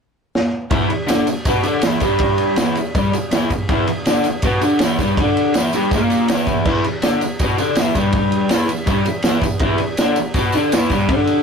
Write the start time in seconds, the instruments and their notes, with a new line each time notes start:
0.35 snare
0.71 overdriven electric guitar E2 E3, kick, ride, tambourine
0.90 overdriven electric guitar E2, ride
1.07 overdriven electric guitar D3 D4, snare, ride, tambourine
1.27 overdriven electric guitar E2, ride, tambourine
1.45 overdriven electric guitar B2 B3, kick, ride, tambourine
1.63 overdriven electric guitar D3 D4, ride, tambourine
1.82 overdriven electric guitar E2 E3, snare, ride, tambourine
2.00 overdriven electric guitar G2 G3, kick, ride, tambourine
2.19 kick, ride, tambourine
2.38 ride, tambourine
2.56 overdriven electric guitar E2 E3, snare, ride, tambourine
2.75 overdriven electric guitar E2, ride, tambourine
2.95 overdriven electric guitar G2 G3, kick, ride, tambourine
3.13 overdriven electric guitar E2, ride, tambourine
3.31 overdriven electric guitar E2 E3, snare, ride, tambourine
3.50 overdriven electric guitar E2, kick, ride, tambourine
3.69 overdriven electric guitar E2 E3, kick, ride, tambourine
3.87 overdriven electric guitar E2, ride, tambourine
4.05 overdriven electric guitar D3 D4, snare, ride, tambourine
4.24 overdriven electric guitar E2, ride, tambourine
4.42 overdriven electric guitar B2 B3, kick, ride, tambourine
4.61 overdriven electric guitar D3 D4, ride, tambourine
4.79 overdriven electric guitar E2, snare, ride, tambourine
4.83 overdriven electric guitar E3
4.99 overdriven electric guitar G2 G3, kick, ride, tambourine
5.17 overdriven electric guitar D3 D4, kick, ride, tambourine
5.37 ride, tambourine
5.54 overdriven electric guitar E2 E3, snare, ride, tambourine
5.73 overdriven electric guitar G2 G3, ride, tambourine
5.91 overdriven electric guitar A#2 A#3, kick, ride, tambourine
6.10 ride, tambourine
6.28 overdriven electric guitar E2 E3, snare, ride, tambourine
6.47 kick, ride, tambourine
6.65 overdriven electric guitar E2 E3, kick, crash, tambourine
6.84 overdriven electric guitar E2, ride, tambourine
7.02 overdriven electric guitar D3 D4, snare, ride, tambourine
7.21 overdriven electric guitar E2, ride, tambourine
7.39 overdriven electric guitar B2 B3, kick, ride, tambourine
7.58 overdriven electric guitar D3 D4, ride, tambourine
7.75 overdriven electric guitar E2 E3, snare, ride, tambourine
7.94 overdriven electric guitar G2 G3, kick, ride, tambourine
8.12 kick, ride, tambourine
8.32 ride, tambourine
8.49 overdriven electric guitar E2 E3, snare, ride, tambourine
8.69 overdriven electric guitar E2, ride, tambourine
8.86 overdriven electric guitar G2 G3, kick, ride, tambourine
9.05 overdriven electric guitar E2, ride, tambourine
9.22 overdriven electric guitar E2 E3, snare, ride, tambourine
9.41 overdriven electric guitar E2, kick, ride, tambourine
9.59 overdriven electric guitar E2 E3, kick, ride, tambourine
9.78 overdriven electric guitar E2, ride, tambourine
9.97 overdriven electric guitar D3 D4, snare, ride, tambourine
10.16 overdriven electric guitar E2, ride, tambourine
10.34 overdriven electric guitar B2 B3, kick, ride, tambourine
10.52 overdriven electric guitar D3 D4, ride, tambourine
10.72 overdriven electric guitar E2 E3, snare, ride, tambourine
10.90 overdriven electric guitar G2 G3, kick, ride, tambourine
11.09 overdriven electric guitar D3 D4, kick, ride, tambourine
11.27 ride, tambourine